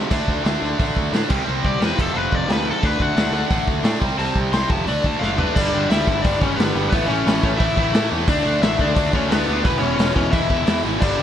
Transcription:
0.10 picked electric bass D2, distorted electric guitar D3 A3 D4, kick, open hi-hat, crash
0.28 picked electric bass D2, kick
0.44 picked electric bass D2, distorted electric guitar D3 A3 D4, snare, open hi-hat
0.61 picked electric bass D2, distorted electric guitar D3 A3 D4
0.78 picked electric bass A1, distorted electric guitar D3 A3 D4, kick, open hi-hat
0.97 picked electric bass D2, kick
1.12 picked electric bass A2, distorted electric guitar D3 A3 D4, snare, open hi-hat
1.29 picked electric bass C2, distorted electric guitar C3 G3 C4, kick, crash
1.45 picked electric bass C2, distorted electric guitar C3 G3 C4
1.64 picked electric bass C2, overdriven electric guitar D5, kick
1.80 picked electric bass E2, distorted electric guitar C3 G3 C4, snare, open hi-hat
1.84 overdriven electric guitar B4
1.95 picked electric bass F1, distorted electric guitar F2 C3 F3, kick
1.99 overdriven electric guitar A4, crash
2.13 picked electric bass F1, distorted electric guitar F2 C3 F3, overdriven electric guitar B4
2.32 picked electric bass F1, overdriven electric guitar D5, kick
2.47 picked electric bass D2, distorted electric guitar F2 C3 F3, snare, open hi-hat
2.52 overdriven electric guitar B4
2.64 distorted electric guitar F2 C3 F3
2.71 overdriven electric guitar A4
2.80 picked electric bass D2, distorted electric guitar D3 A3 D4, kick, open hi-hat
2.85 overdriven electric guitar B4
2.99 picked electric bass D2, overdriven electric guitar F#5, kick
3.16 picked electric bass D2, distorted electric guitar D3 A3 D4, snare, open hi-hat
3.32 picked electric bass D2, distorted electric guitar D3 A3 D4
3.50 picked electric bass A1, distorted electric guitar D3 A3 D4, kick, open hi-hat
3.68 picked electric bass D2, kick
3.83 picked electric bass A2, distorted electric guitar D3 A3 D4, snare, open hi-hat
4.00 picked electric bass C2, distorted electric guitar C3 G3 C4, kick
4.17 picked electric bass C2, distorted electric guitar C3 G3 C4, overdriven electric guitar A5, open hi-hat
4.35 picked electric bass C2, kick
4.52 picked electric bass C2, distorted electric guitar C3 G3 C4, overdriven electric guitar C6, snare, open hi-hat
4.70 picked electric bass F1, distorted electric guitar F2 C3 F3, overdriven electric guitar A5, kick
4.86 picked electric bass D2, distorted electric guitar D3 A3 D4, overdriven electric guitar D5, open hi-hat
5.04 picked electric bass D2, overdriven electric guitar A5, kick
5.19 picked electric bass F#1, distorted electric guitar D3 A3 D4, overdriven electric guitar F5, snare
5.38 distorted electric guitar D3 A3 D4, overdriven electric guitar B4, floor tom
5.55 picked electric bass G1, distorted electric guitar G2 D3 G3, overdriven electric guitar D4 D5, kick, crash
5.73 picked electric bass G1, distorted electric guitar G2 D3 G3
5.90 picked electric bass D2, distorted electric guitar G2 D3 G3, overdriven electric guitar E4 E5, snare, open hi-hat
6.07 picked electric bass G1, distorted electric guitar G2 D3 G3, kick
6.22 picked electric bass G1, distorted electric guitar G2 D3, overdriven electric guitar D4 D5, kick, open hi-hat
6.26 distorted electric guitar G3
6.40 picked electric bass G1, distorted electric guitar G2 D3 G3, overdriven electric guitar C#4 C#5, kick
6.56 picked electric bass G1, distorted electric guitar G2 D3 G3, overdriven electric guitar B3 B4, open hi-hat
6.60 snare
6.75 picked electric bass G1, distorted electric guitar G2 D3 G3
6.89 picked electric bass A1, distorted electric guitar A2, overdriven electric guitar B3 B4, kick, open hi-hat
6.94 distorted electric guitar E3 A3
7.06 distorted electric guitar A2 E3, overdriven electric guitar C#4 C#5
7.10 picked electric bass A1, distorted electric guitar A3
7.25 picked electric bass A1, distorted electric guitar A2 E3 A3, snare, open hi-hat
7.43 picked electric bass A1, distorted electric guitar A2 E3 A3, overdriven electric guitar C#4 C#5, kick
7.58 picked electric bass A1, distorted electric guitar A2 E3 A3, overdriven electric guitar E4 E5, kick, open hi-hat
7.76 picked electric bass A1, distorted electric guitar A2 E3 A3, kick
7.93 distorted electric guitar A2 E3 A3, picked electric bass A2, snare, open hi-hat
8.09 picked electric bass E2, distorted electric guitar A2 E3 A3
8.27 picked electric bass D2, distorted electric guitar D3 A3 D4, overdriven electric guitar D4 D5, kick, open hi-hat
8.42 picked electric bass D2, distorted electric guitar D3 A3 D4
8.62 picked electric bass A1, distorted electric guitar D3 A3 D4, overdriven electric guitar E4 E5, snare, open hi-hat
8.78 picked electric bass D2, distorted electric guitar D3 A3 D4, overdriven electric guitar D4 D5, kick
8.95 picked electric bass D2, distorted electric guitar D3 A3 D4, kick, open hi-hat
9.12 picked electric bass D2, distorted electric guitar D3 A3 D4, overdriven electric guitar C#4 C#5, kick
9.29 picked electric bass D2, distorted electric guitar D3 A3 D4, overdriven electric guitar B3 B4, snare, open hi-hat
9.47 picked electric bass D2, distorted electric guitar D3 A3 D4
9.63 picked electric bass E1, distorted electric guitar E2 B2 E3, overdriven electric guitar B3 B4, kick, open hi-hat
9.79 picked electric bass E1, distorted electric guitar E2 B2 E3, overdriven electric guitar C#4 C#5
9.98 picked electric bass E1, distorted electric guitar E2 B2 E3, snare, open hi-hat
10.15 picked electric bass E1, distorted electric guitar E2 B2 E3, overdriven electric guitar C#4 C#5, kick
10.31 picked electric bass E1, distorted electric guitar E2 B2 E3, overdriven electric guitar E4 E5, kick, open hi-hat
10.49 picked electric bass E1, distorted electric guitar E2 B2 E3, kick
10.66 distorted electric guitar E2 B2 E3, picked electric bass E2, snare, open hi-hat
10.83 picked electric bass G#1, distorted electric guitar E2 B2 E3
11.00 picked electric bass G1, distorted electric guitar G2 D3 G3, overdriven electric guitar D4 D5, kick, crash
11.18 picked electric bass G1, distorted electric guitar G2 D3 G3

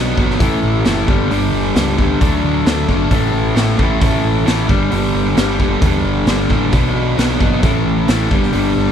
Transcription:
Already playing: picked electric bass B1, distorted electric guitar B2 F#3 B3 D4
0.17 picked electric bass G1, distorted electric guitar B2 F#3 B3 D4, kick
0.30 snare
0.40 picked electric bass A1, distorted electric guitar A2 E3 A3 C#4 E4, kick, open hi-hat
0.63 picked electric bass A1
0.85 picked electric bass F#1, distorted electric guitar A2 E3 A3 C#4 E4, snare, open hi-hat
1.08 picked electric bass G1, distorted electric guitar G2 D3 G3 B3 D4, kick
1.30 picked electric bass G1, distorted electric guitar G2 D3 G3 B3 D4, open hi-hat
1.52 picked electric bass G1
1.76 picked electric bass C#2, distorted electric guitar G2 D3 G3 B3 D4, snare, open hi-hat
1.97 distorted electric guitar G2 D3 G3 B3 D4, kick
2.21 picked electric bass D2, distorted electric guitar D3 F#3 A3 D4, kick, open hi-hat
2.44 picked electric bass D2
2.65 picked electric bass D2, distorted electric guitar D3 F#3 A3 D4, snare, open hi-hat
2.88 picked electric bass G1, distorted electric guitar D3 F#3 A3 D4, kick
3.10 picked electric bass A1, distorted electric guitar A2 E3 A3 C#4 E4, kick, open hi-hat
3.33 picked electric bass A1
3.55 picked electric bass A1, distorted electric guitar A2 E3 A3 C#4 E4, snare, open hi-hat
3.78 picked electric bass A1, distorted electric guitar A2 E3 A3 C#4 E4, kick
4.00 picked electric bass A1, distorted electric guitar A2 E3 A3 C#4 E4, kick, open hi-hat
4.24 picked electric bass A1
4.45 picked electric bass A1, distorted electric guitar A2 E3 A3 C#4 E4, snare, open hi-hat
4.68 picked electric bass G1, distorted electric guitar G2 D3 G3 B3 D4, kick
4.91 picked electric bass G1, distorted electric guitar G2 D3 G3 B3 D4, open hi-hat
5.14 picked electric bass G1
5.35 picked electric bass G1, distorted electric guitar G2 D3 G3 B3 D4, snare, open hi-hat
5.59 distorted electric guitar G2 D3 G3 B3 D4, kick
5.82 picked electric bass E2, distorted electric guitar G2 D3 G3 B3 D4, kick, open hi-hat
6.05 picked electric bass G1
6.26 picked electric bass G1, distorted electric guitar G2 D3 G3 B3 D4, snare, open hi-hat
6.50 picked electric bass A1, distorted electric guitar G2 D3 G3 B3 D4, kick
6.73 picked electric bass B1, distorted electric guitar B2 F#3 B3 D4, kick, open hi-hat
6.95 picked electric bass B1
7.18 picked electric bass B1, distorted electric guitar B2 F#3 B3 D4, snare, open hi-hat
7.40 picked electric bass G1, distorted electric guitar B2 F#3 B3 D4, kick
7.63 picked electric bass A1, distorted electric guitar A2 E3 A3 C#4 E4, kick, open hi-hat
7.86 picked electric bass A1
8.08 picked electric bass A1, distorted electric guitar A2 E3 A3 C#4 E4, snare, open hi-hat
8.30 picked electric bass G1, distorted electric guitar G2 D3 G3 B3 D4, kick
8.43 snare
8.53 picked electric bass G1, distorted electric guitar G2 D3 G3 B3 D4, open hi-hat
8.76 picked electric bass G1

